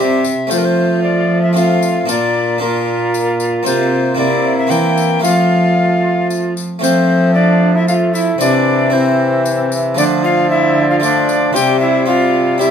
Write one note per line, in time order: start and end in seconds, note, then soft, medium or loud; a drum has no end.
0.00 0.28 C3 soft
0.00 0.30 C3 medium
0.00 0.24 G3 soft
0.00 0.47 C4 soft
0.00 0.24 G4 medium
0.00 0.49 G4 soft
0.00 0.51 E5 medium
0.24 tambourine soft
0.47 2.05 F3 medium
0.47 1.51 A3 soft
0.47 1.52 A3 medium
0.47 1.52 C4 soft
0.47 1.52 F4 soft
0.47 1.52 F4 medium
0.47 0.59 C5 medium
0.47 tambourine medium
0.51 2.05 F3 soft
0.58 0.67 A#4 medium
0.65 1.03 C5 medium
1.03 1.42 D5 medium
1.43 1.55 E5 medium
1.53 2.05 A3 soft
1.53 2.11 A3 medium
1.53 2.06 C4 soft
1.53 2.07 F4 soft
1.53 2.08 F4 medium
1.53 2.07 F5 medium
1.53 tambourine soft
1.82 tambourine medium
2.06 3.63 A#2 medium
2.06 3.62 A#2 medium
2.06 2.57 A#3 soft
2.06 2.61 A#3 medium
2.06 2.58 D4 soft
2.06 2.59 F4 soft
2.06 2.60 F4 medium
2.06 2.60 D5 medium
2.06 tambourine medium
2.58 3.61 A#3 soft
2.58 3.64 A#3 medium
2.58 3.62 D4 soft
2.58 3.62 F4 soft
2.58 2.67 G4 medium
2.58 3.38 A#4 medium
2.66 3.64 F4 medium
3.14 tambourine soft
3.40 tambourine soft
3.63 4.15 C3 medium
3.63 4.14 C3 soft
3.63 4.13 A#3 soft
3.63 4.15 A#3 medium
3.63 4.15 C4 soft
3.63 4.16 F4 soft
3.63 4.20 F4 medium
3.63 4.14 C5 medium
3.63 tambourine medium
4.15 4.66 C3 soft
4.15 4.72 C3 medium
4.15 4.66 A#3 soft
4.15 4.67 C4 soft
4.15 4.68 E4 soft
4.15 4.70 E4 medium
4.15 4.56 D5 medium
4.19 4.70 A#3 medium
4.58 4.72 E5 medium
4.67 5.23 E3 medium
4.67 5.20 E3 soft
4.67 5.20 A#3 soft
4.67 5.20 C4 soft
4.67 5.21 E4 soft
4.67 5.22 E4 medium
4.67 5.23 G5 medium
4.71 5.26 A#3 medium
4.71 tambourine soft
4.97 tambourine medium
5.19 6.77 A3 soft
5.19 6.78 C4 soft
5.19 6.78 F4 soft
5.19 6.54 F4 medium
5.19 6.28 F5 medium
5.24 6.59 F3 soft
5.24 6.60 F3 medium
5.24 6.57 A3 medium
5.24 tambourine medium
6.30 tambourine soft
6.57 tambourine soft
6.79 8.37 F3 medium
6.79 8.35 A3 medium
6.79 7.84 A3 medium
6.79 8.35 C4 medium
6.79 7.38 C4 medium
6.79 8.36 F4 soft
6.79 7.32 C5 medium
6.84 tambourine medium
7.34 7.77 D4 medium
7.34 7.74 D5 medium
7.75 7.88 E4 medium
7.75 7.87 E5 medium
7.88 8.40 A3 medium
7.88 8.13 F4 medium
7.88 7.94 F5 medium
7.88 tambourine medium
8.13 8.40 E4 medium
8.13 8.19 E5 medium
8.13 tambourine medium
8.38 9.99 C3 medium
8.38 9.94 C3 medium
8.38 8.92 E3 medium
8.38 8.89 C4 medium
8.38 8.92 D4 medium
8.38 8.90 E4 medium
8.38 8.94 D5 loud
8.38 tambourine medium
8.90 9.99 E3 medium
8.90 9.93 C4 medium
8.90 9.70 C4 medium
8.90 9.94 E4 medium
8.90 9.72 C5 medium
9.45 tambourine medium
9.72 tambourine medium
9.95 11.51 D3 medium
9.95 11.54 D3 medium
9.95 10.98 F3 medium
9.95 11.02 F3 medium
9.95 10.98 A3 medium
9.95 10.24 D4 medium
9.95 10.04 D5 loud
9.95 tambourine medium
10.23 10.49 F4 medium
10.23 10.50 F5 loud
10.50 10.88 E4 medium
10.50 10.89 E5 loud
10.89 11.02 F4 medium
10.89 10.96 F5 medium
11.00 11.56 F3 medium
11.00 11.52 A3 medium
11.00 11.56 D4 medium
11.00 11.53 F4 medium
11.00 11.54 D5 medium
11.00 tambourine medium
11.29 tambourine medium
11.53 12.71 C3 medium
11.53 12.07 G3 medium
11.53 12.05 C4 medium
11.53 12.05 F4 medium
11.53 11.80 G4 medium
11.53 11.79 G5 loud
11.53 tambourine medium
11.80 12.07 E4 medium
11.80 12.06 E5 medium
12.06 12.59 G3 medium
12.06 12.57 C4 medium
12.06 12.58 F4 medium
12.06 12.59 F4 medium
12.06 12.61 F5 loud
12.58 12.71 G3 medium
12.58 12.71 C4 medium
12.58 12.71 E4 medium
12.58 12.71 G4 soft
12.58 12.71 E5 medium
12.58 tambourine medium